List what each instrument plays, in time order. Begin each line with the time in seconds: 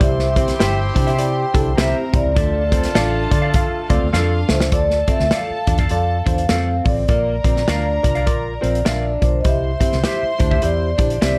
0.00 fingered electric bass C2, horn section C4 E4 G4, tine electric piano E4 G4 C5, string section C5 C6, vibraphone E5, kick, closed hi-hat
0.19 snare
0.36 clean electric guitar C4, tine electric piano E4 G4 C5, kick, closed hi-hat
0.48 snare, closed hi-hat
0.59 fingered electric bass G1, tine electric piano E4 G4 C5, clean electric guitar G4 C5 E5, vibraphone G5, snare, closed hi-hat
0.95 fingered electric bass C3, clean electric guitar D4, tine electric piano E4 G4 C5, kick, closed hi-hat
1.07 clean electric guitar G4 C5 E5, closed hi-hat
1.18 tine electric piano E4 G4 D5, vibraphone G5, closed hi-hat
1.54 fingered electric bass C2, clean electric guitar D4, tine electric piano E4 G4 A4, kick, closed hi-hat
1.77 fingered electric bass C2, clean electric guitar C4 G4 C5 E5, tine electric piano E4 G4 C5, string section A#4 A#5, vibraphone E5, snare, closed hi-hat
2.06 vibraphone E5
2.13 fingered electric bass C2, tine electric piano E4 G4 C5, vibraphone D5, kick, closed hi-hat
2.25 fingered electric bass C#2
2.35 fingered electric bass D2, horn section A3 D4 F4, clean electric guitar D4, tine electric piano F4 A4 D5, string section A4 A5, kick, closed hi-hat
2.72 clean electric guitar C4, tine electric piano F4 A4 C5, kick, closed hi-hat
2.83 snare, closed hi-hat
2.95 fingered electric bass A1, clean electric guitar D4 A4 D5 F5, tine electric piano F4 A4 D5, snare, closed hi-hat
3.31 fingered electric bass D3, tine electric piano F4 A4 D5, kick, closed hi-hat
3.42 clean electric guitar A4 D5 F5
3.54 tine electric piano F4 A4 F5, kick, closed hi-hat
3.89 fingered electric bass D2, clean electric guitar C4, string section F4 F5, tine electric piano F4 A4 D5, kick, closed hi-hat
4.02 fingered electric bass D2
4.13 fingered electric bass F2, clean electric guitar D4 A4 D5 F5, tine electric piano F4 A4 F5, snare
4.49 fingered electric bass C#2, tine electric piano F4 A4 E5, vibraphone C5, snare
4.60 snare
4.72 fingered electric bass D2, tine electric piano F4 A4 D5, string section A4 A5, vibraphone D5, kick, closed hi-hat
4.90 snare
5.08 clean electric guitar C4, tine electric piano F4 A4 E5, vibraphone E5, kick, closed hi-hat
5.19 fingered electric bass D2, snare
5.31 tine electric piano F4 A4 D5, clean electric guitar A4 D5 F5, vibraphone F5, snare, closed hi-hat
5.50 muted fingered electric bass stroke
5.67 fingered electric bass E2, clean electric guitar D4, tine electric piano F4 A4 D5, vibraphone F5, kick, closed hi-hat
5.78 clean electric guitar A4 D5 F5, kick, closed hi-hat
5.89 fingered electric bass F2, tine electric piano F4 A4 D5, vibraphone F5, closed hi-hat
6.26 fingered electric bass E2, clean electric guitar D4, tine electric piano F4 A4 C5, kick, closed hi-hat
6.38 closed hi-hat
6.49 fingered electric bass F2, clean electric guitar C4 A4 D5 F5, tine electric piano F4 A4 F5, snare, closed hi-hat
6.84 fingered electric bass A1, tine electric piano F4 A4 D5, vibraphone D5, kick, open hi-hat
7.08 fingered electric bass A#1, clean electric guitar A#3, tine electric piano F4 A#4 D5, string section A#4 A#5, vibraphone D5, kick, closed hi-hat
7.44 fingered electric bass A#1, clean electric guitar C4, tine electric piano F4 A#4 D5, kick, closed hi-hat
7.56 snare
7.68 fingered electric bass D2, clean electric guitar D4 A#4 D5 F5, tine electric piano F4 A#4 D5, snare, closed hi-hat
8.03 fingered electric bass C2, tine electric piano F4 A#4 D5, kick, closed hi-hat
8.15 clean electric guitar A#4 D5 F5, closed hi-hat
8.26 fingered electric bass A#1, tine electric piano F4 A#4 D5, kick, closed hi-hat
8.61 fingered electric bass A#1, clean electric guitar C4, tine electric piano F4 A#4 C5, closed hi-hat
8.75 closed hi-hat
8.85 fingered electric bass A#1, clean electric guitar D4 A#4 D5 F5, tine electric piano F4 A#4 E5, snare, closed hi-hat
9.21 fingered electric bass B1, tine electric piano F4 A#4 D5, vibraphone C5, kick, closed hi-hat
9.41 tine electric piano E4 G4, vibraphone D#5, kick, closed hi-hat
9.45 fingered electric bass C2, tine electric piano C5, string section C5 C6, vibraphone E5
9.80 clean electric guitar C4, tine electric piano E4 G4 C5, kick, closed hi-hat
9.92 fingered electric bass C2, snare
10.04 tine electric piano E4 G4 C5, clean electric guitar G4 C5 E5, vibraphone E5, snare, closed hi-hat
10.23 muted fingered electric bass stroke
10.39 fingered electric bass D2, clean electric guitar D4, tine electric piano E4 G4 C5, kick, closed hi-hat
10.51 clean electric guitar G4 C5 E5, kick
10.62 fingered electric bass E2, tine electric piano E4 G4 C5, vibraphone D5, closed hi-hat
10.98 fingered electric bass A#1, clean electric guitar D4, tine electric piano E4 G4 C5, kick, closed hi-hat
11.10 vibraphone D5, closed hi-hat
11.21 fingered electric bass C2, clean electric guitar C4 G4 C5 E5, tine electric piano E4 G4 C5, snare, closed hi-hat